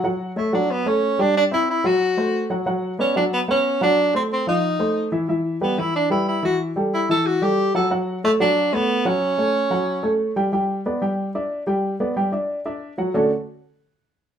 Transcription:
X:1
M:4/4
L:1/8
Q:1/4=183
K:D
V:1 name="Grand piano"
[F,Ff]2 [A,Ac] [F,Ff]2 [A,Ac]2 [G,Gg]- | [G,Gg] [=C=ce]2 [F,Ff]2 [A,Ac]2 [F,Ff] | [F,Ff]2 [B,Bd] [F,Ff]2 [B,Bf]2 [F,Ff]- | [F,Ff] [A,A=c]2 [=F,=F=f]2 [A,Ac]2 [E,Ee] |
[E,Ee]2 [G,GB] [E,Ee]2 [G,GB]2 [E,Ee]- | [E,Ee] [G,GA]2 [E,Ee]2 [G,GA]2 [F,Ff] | [F,Ff]2 [A,Ac] [F,Ff]2 [A,Ac]2 [F,Ff]- | [F,Ff] [A,Ac]2 [F,Ff]2 [A,Ac]2 [G,Gg] |
[G,Gg]2 [B,Bd] [G,Gg]2 [Dde]2 [G,Gg]- | [G,Gg] [B,Bd] [G,Gg] [Dde]2 [Dde]2 [F,Ff] | [D,A,CDFA] z6 z |]
V:2 name="Tenor saxophone"
z2 A, D B, C2 D | D E E F4 z | z2 C D B, C2 D- | D =C C _E4 z |
z2 B, E D E E F | z2 E A F G2 A | z2 A, D2 B,2 C- | C6 z2 |
z8 | z8 | z8 |]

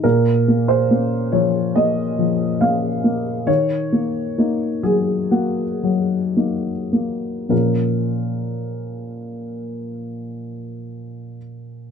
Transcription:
X:1
M:4/4
L:1/16
Q:1/4=60
K:Bbm
V:1 name="Upright piano"
B3 c3 d2 e4 f4 | d6 A2 G8 | [B,,F,DFB]16 |]
V:2 name="Upright piano"
B,,2 B,2 [B,D]2 F,2 B,2 F,2 [B,D]2 B,2 | E,2 B,2 [B,E]2 G,2 B,2 G,2 [B,E]2 B,2 | z16 |]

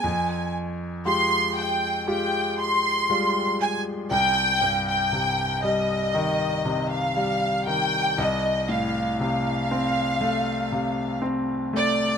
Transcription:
X:1
M:4/4
L:1/16
Q:1/4=59
K:Cm
V:1 name="Violin section"
a2 z2 c'2 g2 g2 c'4 a2 | g3 g3 e4- e f3 g2 | e2 f2 f8 z2 d2 |]
V:2 name="Grand piano" clef=bass
F,,4 [A,FG]4 [A,FG]4 [G,A,F]4 | C,,2 G,,2 C,2 G,2 E,2 C,2 G,2 E,2 | C,,2 =A,,2 C,2 C2 =A,2 C,2 C2 A,2 |]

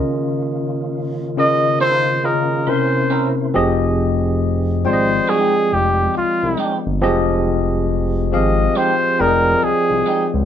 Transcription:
X:1
M:4/4
L:1/16
Q:"Swing 16ths" 1/4=69
K:Fm
V:1 name="Flugelhorn"
z6 e2 c2 B2 c3 z | z6 c2 A2 G2 F3 z | z6 e2 c2 B2 A3 z |]
V:2 name="Tine electric piano"
[D,DFBe]6 [D,DFBe]4 [D,DFBe]2 [C,CD=EB]4 | [F,CGAe]6 [F,A,C=deg]8 z2 | [F,CGAe]6 [F,CGAf]4 [F,CA=deg]6 |]
V:3 name="Clean electric guitar"
z8 [EFB] z4 z [D=EB]2 | z8 [A,EG] z4 z [A,EG]2 | z8 [A,EG]2 z4 [A,EG]2 |]
V:4 name="Tonewheel organ"
[E,B,DF]12 [C,B,=Ec]4 | z16 | z16 |]
V:5 name="Analog synth bass" clef=bass
z16 | F,,,6 A,,,2 z2 F,,,2 C,, C,, z G,,, | F,,,6 A,,,2 z2 F,,,2 C,, C,, z D,, |]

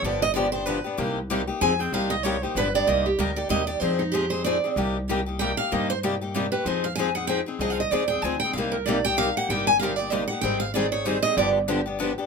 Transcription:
X:1
M:3/4
L:1/16
Q:"Swing" 1/4=190
K:Cm
V:1 name="Steel-string acoustic guitar"
d2 e2 d2 c2 =B4 | z8 a2 g2 | f2 e2 _d2 c2 =B2 =d2 | e2 G2 B2 d2 e2 d2 |
c2 E2 G2 c2 d3 z | z8 g2 f2 | e2 c2 z6 =B2 | c2 f2 a2 ^f2 g2 z2 |
(3e2 f2 e2 d2 g2 a2 g2 | f2 B2 d2 g2 f2 ^f2 | g2 a2 f2 d2 e2 ^f2 | g2 f2 d2 _d2 c2 e2 |
d2 z8 z2 |]
V:2 name="Steel-string acoustic guitar"
[D,F,=B,DG]2 z2 [D,F,B,DG]2 [B,DG]2 [D,F,B,DG]2 [B,DG]2 | [C,G,B,EG]2 z2 [C,G,B,EG]2 [B,EG]2 [F,CEA]2 [CEA]2 | [C,G,B,EG]2 z2 [C,G,B,EG]2 [B,EG]2 [D,F,=B,DG]2 [B,DG]2 | [C,G,B,EG]2 z2 [C,G,B,EG]2 [B,EG]2 [C,G,B,EG]2 [B,EG]2 |
[F,CEA]2 z2 [F,CEA]2 [CEA]2 [F,CEA]2 [CEA]2 | [C,G,B,EG]2 z2 [C,G,B,EG]2 [B,EG]2 [C,G,B,EG]2 [B,EG]2 | [C,G,B,EG]2 z2 [C,G,B,EG]2 [B,EG]2 [C,G,B,EG]2 [B,EG]2 | [F,CEA]2 z2 [F,CEA]2 [CEA]2 [F,CEA]2 [CEA]2 |
[F,CEA]2 z2 [F,CEA]2 [CEA]2 [F,CEA]2 [CEA]2 | [C,G,B,EG]2 z2 [C,G,B,EG]2 [B,EG]2 [C,G,B,EG]2 [B,EG]2 | [C,G,B,EG]2 z2 [C,G,B,EG]2 [B,EG]2 [C,G,B,EG]2 [B,EG]2 | [E,G,CEA]2 z2 [E,G,CEA]2 [CEA]2 [E,G,CEA]2 [CEA]2 |
[D,F,=B,DG]2 z2 [D,F,B,DG]2 [B,DG]2 [D,F,B,DG]2 [B,DG]2 |]
V:3 name="Steel-string acoustic guitar"
[D,F,=B,DG]2 z2 [D,F,B,DG]2 z2 [D,F,B,DG]2 z2 | [C,G,B,EG]2 z2 [C,G,B,EG]2 z2 [F,CEA]2 z2 | [C,G,B,EG]2 z2 [C,G,B,EG]2 z2 [D,F,=B,DG]2 z2 | [C,G,B,EG]2 z2 [C,G,B,EG]2 z2 [C,G,B,EG]2 z2 |
[F,CEA]2 z2 [F,CEA]2 z2 [F,CEA]2 z2 | [C,G,B,EG]2 z2 [C,G,B,EG]2 z2 [C,G,B,EG]2 z2 | [C,G,B,EG]2 z2 [C,G,B,EG]2 z2 [C,G,B,EG]2 z2 | [F,CEA]2 z2 [F,CEA]2 z2 [F,CEA]2 z2 |
[F,CEA]2 z2 [F,CEA]2 z2 [F,CEA]2 z2 | [C,G,B,EG]2 z2 [C,G,B,EG]2 z2 [C,G,B,EG]2 z2 | [C,G,B,EG]2 z2 [C,G,B,EG]2 z2 [C,G,B,EG]2 z2 | [E,G,CEA]2 z2 [E,G,CEA]2 z2 [E,G,CEA]2 z2 |
[D,F,=B,DG]2 z2 [D,F,B,DG]2 z2 [D,F,B,DG]2 z2 |]
V:4 name="Upright bass" clef=bass
G,,,12 | C,,8 F,,4 | C,,8 G,,,4 | C,,4 D,,4 E,,4 |
F,,12 | C,,12 | G,,12 | F,,12 |
C,,4 E,,4 D,,4 | C,,12 | G,,,12 | A,,,12 |
G,,,12 |]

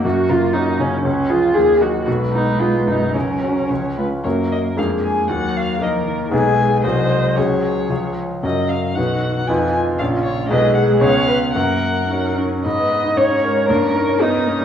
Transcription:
X:1
M:2/4
L:1/16
Q:1/4=116
K:F#
V:1 name="Violin"
z2 A2 z2 A2 | z2 B2 z2 A2 | B8 | A4 c2 B2 |
c2 d2 e2 g2 | f2 e2 d2 z2 | g4 d4 | c6 z2 |
d2 e2 f3 f | _a2 a2 e2 c2 | d2 f2 e4 | f6 z2 |
[K:G#m] b4 a4 | c'4 d'4 |]
V:2 name="Viola"
F2 E2 D2 C2 | C2 E2 G2 F2 | F2 D2 E2 D2 | C6 z2 |
A4 G4 | F4 A4 | G4 ^B4 | G6 z2 |
z4 F4 | =F8 | G4 c2 B2 | A6 z2 |
[K:G#m] d4 c4 | A4 D4 |]
V:3 name="Grand piano"
F,,2 A,2 [CF]2 C,2 | C,,2 [EG]2 D,,2 [DF]2 | B,,,2 B,2 [DG]2 F,,2 | C,,2 [CF]2 C,,2 [CE]2 |
[F,,A,CF]4 [E,,A,=DG]4 | D,,4 [A,DA]4 | [B,,,B,DG]4 [^B,,,G,FG]4 | [C,,CFG]4 [C,,CEG]4 |
[F,,CFA]4 [B,,,DFB]4 | [=F,,_E=F_c]4 [A,,,^C^E^c]4 | [B,,,DGB]4 [C,,CGB]4 | F,,4 [CFA]4 |
[K:G#m] G,, B, B D G,, C A c | =G,, C A c d A C =G, |]
V:4 name="Cello" clef=bass
z2 C,2 z2 C,2 | z2 E,2 z2 F,2 | G,8 | F,4 E,2 G,2 |
A,4 G,4 | F,4 E,2 D,2 | G,4 F,4 | F,4 E,2 z2 |
C,4 D,4- | D,4 C,4 | G,4 B,4 | A,4 D2 C2 |
[K:G#m] z4 C2 G,2 | A,2 D2 B,2 A,2 |]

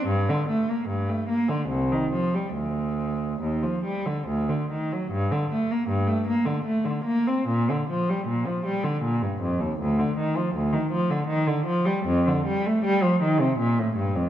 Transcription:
X:1
M:3/4
L:1/16
Q:1/4=77
K:Gm
V:1 name="Cello" clef=bass
G,, D, A, B, G,, A, B, D, C,, E, F, G, | D,,4 E,, F, G, D, D,, D, E, ^F, | G,, D, A, B, G,, A, B, D, A, D, B, C | B,, D, F, G, B,, F, G, D, B,, G,, F,, E,, |
D,, D, E, F, D,, E, F, D, E, D, F, G, | F,, D, G, A, G, F, E, C, B,, A,, G,, F,, |]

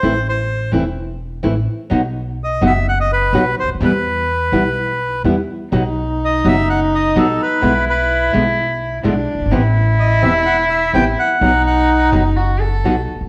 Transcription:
X:1
M:4/4
L:1/16
Q:1/4=127
K:Bphr
V:1 name="Bandoneon"
c2 c4 z8 z2 | z4 ^d2 e2 f d B4 c2 | B12 z4 | z4 ^d2 e2 f2 d2 A2 B2- |
B2 B4 z8 z2 | z4 ^d2 e2 f2 e2 g2 f2- | f2 f4 z8 z2 |]
V:2 name="Cello"
z16 | z16 | z16 | ^D16 |
E12 D4 | E16 | ^D8 F2 A4 z2 |]
V:3 name="Nylon-string guitar"
[E,A,CE]2 z4 [E,A,CE]2 z4 [E,A,CE]2 z2 | [B,,F,B,^DF]2 z4 [B,,F,B,DF]2 z4 [B,,F,B,DF]2 z2 | [B,,E,G,B,E]2 z4 [B,,E,G,B,E]2 z4 [B,,E,G,B,E]2 z2 | [B,,F,B,^DF]2 z4 [B,,F,B,DF]2 z4 [B,,F,B,DF]2 z2 |
[B,,D,^G,B,E]2 z4 [B,,D,G,B,E]2 z4 [B,,D,G,B,E]2 z2 | [C,E,B,CE]2 z4 [C,E,B,CE]2 z4 [C,E,B,CE]2 z2 | [B,,F,B,^DF]2 z4 [B,,F,B,DF]2 z4 [B,,F,B,DF]2 z2 |]
V:4 name="Upright bass" clef=bass
A,,,4- A,,,3/2 z/2 E,,,4- E,,,3/2 z/2 A,,,3/2 z2 z/2 | B,,,4- B,,,3/2 z/2 F,,,4- F,,,3/2 z/2 B,,,3/2 z ^C,,/2 D,,/2 ^D,,/2 | E,,4- E,,3/2 z/2 B,,,4- B,,,3/2 z/2 E,,3/2 z2 z/2 | B,,,4- B,,,3/2 z/2 F,,,4- F,,,3/2 z/2 B,,,3/2 z2 z/2 |
B,,,4- B,,,3/2 z/2 B,,,4- B,,,3/2 z/2 B,,,3/2 z F,,,/2 G,,,/2 ^G,,,/2 | A,,,4- A,,,3/2 z/2 E,,,4- E,,,3/2 z/2 A,,,3/2 z2 z/2 | B,,,4- B,,,3/2 z/2 F,,,4- F,,,3/2 z/2 B,,,3/2 z A,,,/2 ^A,,,/2 z/2 |]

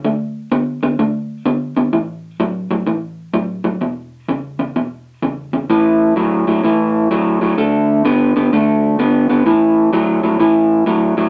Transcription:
X:1
M:4/4
L:1/8
Q:"Swing" 1/4=128
K:A
V:1 name="Clean electric guitar" clef=bass
[D,A,]2 [D,B,] [D,B,] [D,A,]2 [D,B,] [D,B,] | [A,,E,]2 [A,,F,] [A,,F,] [A,,E,]2 [A,,F,] [A,,F,] | [E,,B,,]2 [E,,C,] [E,,C,] [E,,B,,]2 [E,,C,] [E,,C,] | [A,,E,]2 [A,,F,] [A,,F,] [A,,E,]2 [A,,F,] [A,,F,] |
[D,A,]2 [D,B,] [D,B,] [D,A,]2 [D,B,] [D,B,] | [A,,E,]2 [A,,F,] [A,,F,] [A,,E,]2 [A,,F,] [A,,F,] |]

